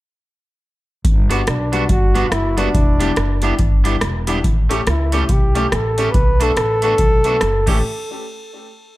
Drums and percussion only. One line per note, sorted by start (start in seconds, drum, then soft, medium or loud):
1.05 kick loud
1.05 closed hi-hat medium
1.31 closed hi-hat medium
1.47 cross-stick loud
1.47 closed hi-hat medium
1.73 closed hi-hat medium
1.89 kick loud
1.89 closed hi-hat medium
2.16 closed hi-hat medium
2.32 cross-stick loud
2.32 closed hi-hat medium
2.58 closed hi-hat medium
2.75 kick loud
2.75 closed hi-hat medium
3.01 closed hi-hat medium
3.16 cross-stick loud
3.16 closed hi-hat medium
3.42 closed hi-hat medium
3.59 kick loud
3.59 closed hi-hat medium
3.85 closed hi-hat medium
4.01 cross-stick loud
4.01 closed hi-hat medium
4.27 closed hi-hat medium
4.44 kick loud
4.44 closed hi-hat medium
4.71 closed hi-hat medium
4.87 cross-stick loud
4.87 closed hi-hat medium
5.12 closed hi-hat medium
5.29 kick loud
5.29 closed hi-hat medium
5.55 closed hi-hat medium
5.72 cross-stick loud
5.72 closed hi-hat medium
5.98 closed hi-hat medium
6.14 kick loud
6.14 closed hi-hat medium
6.41 closed hi-hat medium
6.57 cross-stick loud
6.57 closed hi-hat medium
6.82 closed hi-hat medium
6.98 kick loud
6.98 closed hi-hat medium
7.24 closed hi-hat medium
7.41 cross-stick loud
7.41 closed hi-hat medium
7.67 kick loud
7.67 crash medium